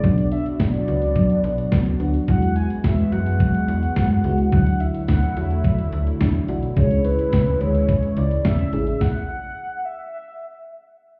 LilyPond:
<<
  \new Staff \with { instrumentName = "Soft synth lead" } { \time 4/4 \key cis \phrygian \tempo 4 = 107 d''8 e''8 d''2~ d''8 r8 | fis''8 gis''8 e''8 fis''8 fis''2 | fis''8 e''8 fis''8 e''2 r8 | cis''8 b'4 cis''4 d''8 e''4 |
fis''4. e''4. r4 | }
  \new Staff \with { instrumentName = "FM electric piano" } { \time 4/4 \key cis \phrygian <b d' fis'>4 r2 r8 <b d' fis'>16 r16 | <gis e' fis'>4 r2 r8 <gis e' fis'>16 r16 | <d' e' fis'>4 r2 r8 <d' e' fis'>16 r16 | <cis' e' gis'>4 r2 r8 <cis' e' gis'>16 r16 |
r1 | }
  \new Staff \with { instrumentName = "Synth arpeggio sound" } { \time 4/4 \key cis \phrygian fis8 d'8 b8 fis'8 fis8 d'8 b8 fis'8 | fis8 e'8 gis8 fis'8 fis8 e'8 gis8 fis'8 | fis8 e'8 d'8 fis'8 fis8 e'8 d'8 fis'8 | gis8 e'8 cis'8 gis'8 gis8 e'8 cis'8 gis'8 |
r1 | }
  \new Staff \with { instrumentName = "Analog synth pad" } { \clef bass \time 4/4 \key cis \phrygian << { fis'1~ | fis'1 | e'1 | e'1 |
r1 | } \\ { <fis b d'>1 | <e gis b>1 | <d fis a>1 | <cis e gis>1 |
r1 | } >> }
  \new Staff \with { instrumentName = "FM bass" } { \clef bass \time 4/4 \key cis \phrygian b,,4 b,,8 cis,8. r16 b,,8 cis,8 d,8 | e,4 e,8 fis,8. r16 e,8 fis,8 cis,8 | d,4 d,8 e,8. r16 d,8 e,8 b,,8 | cis,4 cis,8 d,8. r16 cis,8 e,8 a,,8 |
r1 | }
  \new DrumStaff \with { instrumentName = "Drums" } \drummode { \time 4/4 <hh bd>16 hh16 hh16 hh16 <hh bd sn>16 hh16 hh16 hh16 <hh bd>16 hh16 hh16 hh16 <hh bd sn>16 hh16 hh16 hh16 | <hh bd>16 hh16 hh16 hh16 <hh bd sn>16 hh16 hh16 hh16 <hh bd>16 hh16 hh16 hh16 <hh bd sn>16 hh16 hh16 hh16 | <hh bd>16 hh16 hh16 hh16 <hh bd sn>16 hh16 hh16 hh16 <hh bd>16 hh16 hh16 hh16 <hh bd sn>16 hh16 hh16 hh16 | <hh bd>16 hh16 hh16 hh16 <hh bd sn>16 hh16 hh16 hh16 <hh bd>16 hh16 hh16 hh16 <hh bd sn>16 hh16 hh16 hh16 |
<bd sn>4 r4 r4 r4 | }
>>